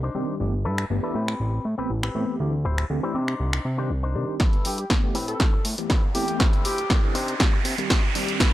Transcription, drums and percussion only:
0, 0, Header, 1, 2, 480
1, 0, Start_track
1, 0, Key_signature, 1, "major"
1, 0, Tempo, 500000
1, 385, Time_signature, 4, 2, 24, 8
1, 8191, End_track
2, 0, Start_track
2, 0, Title_t, "Drums"
2, 752, Note_on_c, 9, 26, 61
2, 848, Note_off_c, 9, 26, 0
2, 1232, Note_on_c, 9, 26, 54
2, 1328, Note_off_c, 9, 26, 0
2, 1952, Note_on_c, 9, 26, 62
2, 2048, Note_off_c, 9, 26, 0
2, 2671, Note_on_c, 9, 26, 59
2, 2767, Note_off_c, 9, 26, 0
2, 3151, Note_on_c, 9, 26, 53
2, 3247, Note_off_c, 9, 26, 0
2, 3391, Note_on_c, 9, 26, 70
2, 3487, Note_off_c, 9, 26, 0
2, 4222, Note_on_c, 9, 38, 46
2, 4222, Note_on_c, 9, 42, 64
2, 4224, Note_on_c, 9, 36, 115
2, 4318, Note_off_c, 9, 38, 0
2, 4318, Note_off_c, 9, 42, 0
2, 4320, Note_off_c, 9, 36, 0
2, 4349, Note_on_c, 9, 42, 37
2, 4445, Note_off_c, 9, 42, 0
2, 4463, Note_on_c, 9, 46, 99
2, 4559, Note_off_c, 9, 46, 0
2, 4590, Note_on_c, 9, 42, 51
2, 4686, Note_off_c, 9, 42, 0
2, 4704, Note_on_c, 9, 36, 91
2, 4704, Note_on_c, 9, 38, 49
2, 4704, Note_on_c, 9, 42, 62
2, 4800, Note_off_c, 9, 36, 0
2, 4800, Note_off_c, 9, 38, 0
2, 4800, Note_off_c, 9, 42, 0
2, 4943, Note_on_c, 9, 46, 91
2, 5039, Note_off_c, 9, 46, 0
2, 5070, Note_on_c, 9, 42, 50
2, 5166, Note_off_c, 9, 42, 0
2, 5183, Note_on_c, 9, 38, 49
2, 5183, Note_on_c, 9, 42, 66
2, 5184, Note_on_c, 9, 36, 110
2, 5279, Note_off_c, 9, 38, 0
2, 5279, Note_off_c, 9, 42, 0
2, 5280, Note_off_c, 9, 36, 0
2, 5422, Note_on_c, 9, 46, 102
2, 5518, Note_off_c, 9, 46, 0
2, 5550, Note_on_c, 9, 42, 52
2, 5646, Note_off_c, 9, 42, 0
2, 5662, Note_on_c, 9, 38, 51
2, 5662, Note_on_c, 9, 42, 65
2, 5664, Note_on_c, 9, 36, 95
2, 5758, Note_off_c, 9, 38, 0
2, 5758, Note_off_c, 9, 42, 0
2, 5760, Note_off_c, 9, 36, 0
2, 5902, Note_on_c, 9, 46, 98
2, 5998, Note_off_c, 9, 46, 0
2, 6029, Note_on_c, 9, 42, 51
2, 6125, Note_off_c, 9, 42, 0
2, 6144, Note_on_c, 9, 36, 124
2, 6144, Note_on_c, 9, 38, 56
2, 6144, Note_on_c, 9, 42, 61
2, 6240, Note_off_c, 9, 36, 0
2, 6240, Note_off_c, 9, 38, 0
2, 6240, Note_off_c, 9, 42, 0
2, 6271, Note_on_c, 9, 42, 36
2, 6367, Note_off_c, 9, 42, 0
2, 6384, Note_on_c, 9, 46, 105
2, 6480, Note_off_c, 9, 46, 0
2, 6511, Note_on_c, 9, 42, 52
2, 6607, Note_off_c, 9, 42, 0
2, 6624, Note_on_c, 9, 36, 103
2, 6624, Note_on_c, 9, 38, 60
2, 6624, Note_on_c, 9, 42, 63
2, 6720, Note_off_c, 9, 36, 0
2, 6720, Note_off_c, 9, 38, 0
2, 6720, Note_off_c, 9, 42, 0
2, 6864, Note_on_c, 9, 46, 101
2, 6960, Note_off_c, 9, 46, 0
2, 6991, Note_on_c, 9, 42, 51
2, 7087, Note_off_c, 9, 42, 0
2, 7104, Note_on_c, 9, 38, 62
2, 7104, Note_on_c, 9, 42, 63
2, 7105, Note_on_c, 9, 36, 116
2, 7200, Note_off_c, 9, 38, 0
2, 7200, Note_off_c, 9, 42, 0
2, 7201, Note_off_c, 9, 36, 0
2, 7344, Note_on_c, 9, 46, 104
2, 7440, Note_off_c, 9, 46, 0
2, 7472, Note_on_c, 9, 42, 52
2, 7568, Note_off_c, 9, 42, 0
2, 7585, Note_on_c, 9, 36, 100
2, 7586, Note_on_c, 9, 38, 67
2, 7586, Note_on_c, 9, 42, 65
2, 7681, Note_off_c, 9, 36, 0
2, 7682, Note_off_c, 9, 38, 0
2, 7682, Note_off_c, 9, 42, 0
2, 7826, Note_on_c, 9, 46, 106
2, 7922, Note_off_c, 9, 46, 0
2, 7953, Note_on_c, 9, 42, 51
2, 8049, Note_off_c, 9, 42, 0
2, 8065, Note_on_c, 9, 36, 127
2, 8066, Note_on_c, 9, 38, 73
2, 8066, Note_on_c, 9, 42, 62
2, 8161, Note_off_c, 9, 36, 0
2, 8162, Note_off_c, 9, 38, 0
2, 8162, Note_off_c, 9, 42, 0
2, 8191, End_track
0, 0, End_of_file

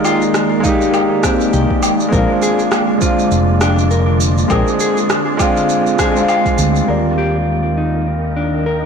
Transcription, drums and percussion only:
0, 0, Header, 1, 2, 480
1, 0, Start_track
1, 0, Key_signature, -3, "major"
1, 0, Tempo, 594059
1, 1719, Time_signature, 4, 2, 24, 8
1, 7155, End_track
2, 0, Start_track
2, 0, Title_t, "Drums"
2, 37, Note_on_c, 9, 77, 77
2, 38, Note_on_c, 9, 82, 72
2, 118, Note_off_c, 9, 77, 0
2, 119, Note_off_c, 9, 82, 0
2, 175, Note_on_c, 9, 82, 31
2, 256, Note_off_c, 9, 82, 0
2, 277, Note_on_c, 9, 37, 75
2, 279, Note_on_c, 9, 82, 46
2, 358, Note_off_c, 9, 37, 0
2, 359, Note_off_c, 9, 82, 0
2, 518, Note_on_c, 9, 82, 76
2, 519, Note_on_c, 9, 36, 98
2, 599, Note_off_c, 9, 82, 0
2, 600, Note_off_c, 9, 36, 0
2, 658, Note_on_c, 9, 82, 32
2, 739, Note_off_c, 9, 82, 0
2, 757, Note_on_c, 9, 77, 81
2, 758, Note_on_c, 9, 82, 41
2, 838, Note_off_c, 9, 77, 0
2, 839, Note_off_c, 9, 82, 0
2, 997, Note_on_c, 9, 37, 76
2, 999, Note_on_c, 9, 36, 94
2, 999, Note_on_c, 9, 82, 81
2, 1078, Note_off_c, 9, 37, 0
2, 1080, Note_off_c, 9, 36, 0
2, 1080, Note_off_c, 9, 82, 0
2, 1137, Note_on_c, 9, 82, 33
2, 1217, Note_off_c, 9, 82, 0
2, 1238, Note_on_c, 9, 82, 41
2, 1319, Note_off_c, 9, 82, 0
2, 1377, Note_on_c, 9, 36, 57
2, 1458, Note_off_c, 9, 36, 0
2, 1476, Note_on_c, 9, 77, 83
2, 1477, Note_on_c, 9, 82, 78
2, 1557, Note_off_c, 9, 77, 0
2, 1558, Note_off_c, 9, 82, 0
2, 1616, Note_on_c, 9, 82, 31
2, 1697, Note_off_c, 9, 82, 0
2, 1718, Note_on_c, 9, 36, 111
2, 1718, Note_on_c, 9, 82, 41
2, 1799, Note_off_c, 9, 36, 0
2, 1799, Note_off_c, 9, 82, 0
2, 1958, Note_on_c, 9, 82, 73
2, 2039, Note_off_c, 9, 82, 0
2, 2094, Note_on_c, 9, 82, 31
2, 2175, Note_off_c, 9, 82, 0
2, 2195, Note_on_c, 9, 37, 77
2, 2195, Note_on_c, 9, 77, 81
2, 2196, Note_on_c, 9, 82, 43
2, 2275, Note_off_c, 9, 37, 0
2, 2275, Note_off_c, 9, 77, 0
2, 2277, Note_off_c, 9, 82, 0
2, 2437, Note_on_c, 9, 82, 74
2, 2438, Note_on_c, 9, 36, 97
2, 2517, Note_off_c, 9, 82, 0
2, 2519, Note_off_c, 9, 36, 0
2, 2576, Note_on_c, 9, 82, 31
2, 2657, Note_off_c, 9, 82, 0
2, 2678, Note_on_c, 9, 82, 43
2, 2759, Note_off_c, 9, 82, 0
2, 2917, Note_on_c, 9, 37, 78
2, 2917, Note_on_c, 9, 77, 84
2, 2918, Note_on_c, 9, 82, 72
2, 2997, Note_off_c, 9, 37, 0
2, 2997, Note_off_c, 9, 77, 0
2, 2999, Note_off_c, 9, 82, 0
2, 3057, Note_on_c, 9, 82, 34
2, 3138, Note_off_c, 9, 82, 0
2, 3159, Note_on_c, 9, 82, 40
2, 3240, Note_off_c, 9, 82, 0
2, 3398, Note_on_c, 9, 82, 77
2, 3479, Note_off_c, 9, 82, 0
2, 3538, Note_on_c, 9, 82, 29
2, 3618, Note_off_c, 9, 82, 0
2, 3636, Note_on_c, 9, 77, 78
2, 3637, Note_on_c, 9, 82, 42
2, 3639, Note_on_c, 9, 36, 112
2, 3717, Note_off_c, 9, 77, 0
2, 3718, Note_off_c, 9, 82, 0
2, 3720, Note_off_c, 9, 36, 0
2, 3777, Note_on_c, 9, 82, 30
2, 3858, Note_off_c, 9, 82, 0
2, 3878, Note_on_c, 9, 82, 77
2, 3959, Note_off_c, 9, 82, 0
2, 4017, Note_on_c, 9, 82, 32
2, 4098, Note_off_c, 9, 82, 0
2, 4119, Note_on_c, 9, 37, 83
2, 4120, Note_on_c, 9, 82, 46
2, 4200, Note_off_c, 9, 37, 0
2, 4201, Note_off_c, 9, 82, 0
2, 4359, Note_on_c, 9, 77, 85
2, 4360, Note_on_c, 9, 36, 101
2, 4360, Note_on_c, 9, 82, 71
2, 4439, Note_off_c, 9, 77, 0
2, 4441, Note_off_c, 9, 36, 0
2, 4441, Note_off_c, 9, 82, 0
2, 4499, Note_on_c, 9, 82, 30
2, 4580, Note_off_c, 9, 82, 0
2, 4600, Note_on_c, 9, 82, 43
2, 4681, Note_off_c, 9, 82, 0
2, 4739, Note_on_c, 9, 82, 29
2, 4820, Note_off_c, 9, 82, 0
2, 4839, Note_on_c, 9, 37, 85
2, 4840, Note_on_c, 9, 36, 95
2, 4841, Note_on_c, 9, 82, 75
2, 4920, Note_off_c, 9, 37, 0
2, 4921, Note_off_c, 9, 36, 0
2, 4921, Note_off_c, 9, 82, 0
2, 4979, Note_on_c, 9, 82, 33
2, 5060, Note_off_c, 9, 82, 0
2, 5078, Note_on_c, 9, 77, 78
2, 5079, Note_on_c, 9, 82, 41
2, 5159, Note_off_c, 9, 77, 0
2, 5160, Note_off_c, 9, 82, 0
2, 5218, Note_on_c, 9, 36, 60
2, 5218, Note_on_c, 9, 82, 33
2, 5299, Note_off_c, 9, 36, 0
2, 5299, Note_off_c, 9, 82, 0
2, 5319, Note_on_c, 9, 82, 76
2, 5400, Note_off_c, 9, 82, 0
2, 5459, Note_on_c, 9, 82, 33
2, 5540, Note_off_c, 9, 82, 0
2, 7155, End_track
0, 0, End_of_file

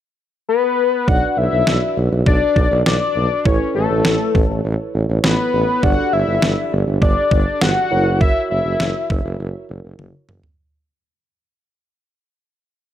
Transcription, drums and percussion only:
0, 0, Header, 1, 2, 480
1, 0, Start_track
1, 0, Key_signature, 2, "minor"
1, 0, Tempo, 594059
1, 872, Time_signature, 4, 2, 24, 8
1, 10450, End_track
2, 0, Start_track
2, 0, Title_t, "Drums"
2, 872, Note_on_c, 9, 36, 111
2, 952, Note_off_c, 9, 36, 0
2, 1350, Note_on_c, 9, 38, 92
2, 1431, Note_off_c, 9, 38, 0
2, 1830, Note_on_c, 9, 36, 94
2, 1910, Note_off_c, 9, 36, 0
2, 2070, Note_on_c, 9, 36, 93
2, 2150, Note_off_c, 9, 36, 0
2, 2313, Note_on_c, 9, 38, 106
2, 2394, Note_off_c, 9, 38, 0
2, 2792, Note_on_c, 9, 36, 111
2, 2873, Note_off_c, 9, 36, 0
2, 3271, Note_on_c, 9, 38, 95
2, 3352, Note_off_c, 9, 38, 0
2, 3514, Note_on_c, 9, 36, 87
2, 3595, Note_off_c, 9, 36, 0
2, 4233, Note_on_c, 9, 38, 109
2, 4314, Note_off_c, 9, 38, 0
2, 4712, Note_on_c, 9, 36, 111
2, 4793, Note_off_c, 9, 36, 0
2, 5190, Note_on_c, 9, 38, 95
2, 5271, Note_off_c, 9, 38, 0
2, 5670, Note_on_c, 9, 36, 96
2, 5751, Note_off_c, 9, 36, 0
2, 5910, Note_on_c, 9, 36, 93
2, 5990, Note_off_c, 9, 36, 0
2, 6153, Note_on_c, 9, 38, 105
2, 6234, Note_off_c, 9, 38, 0
2, 6632, Note_on_c, 9, 36, 112
2, 6713, Note_off_c, 9, 36, 0
2, 7110, Note_on_c, 9, 38, 91
2, 7191, Note_off_c, 9, 38, 0
2, 7354, Note_on_c, 9, 36, 90
2, 7435, Note_off_c, 9, 36, 0
2, 8071, Note_on_c, 9, 48, 52
2, 8152, Note_off_c, 9, 48, 0
2, 8312, Note_on_c, 9, 45, 78
2, 8392, Note_off_c, 9, 45, 0
2, 8432, Note_on_c, 9, 43, 80
2, 8512, Note_off_c, 9, 43, 0
2, 10450, End_track
0, 0, End_of_file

